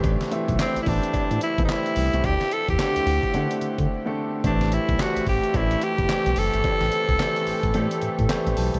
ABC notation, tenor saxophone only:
X:1
M:4/4
L:1/16
Q:"Swing 16ths" 1/4=109
K:Ador
V:1 name="Tenor saxophone"
z4 C3/2 E/2 D4 E3/2 _E/2 =E4 | G2 A G8 z4 z | D2 E2 F2 G2 E2 G4 A2- | A12- A2 z2 |]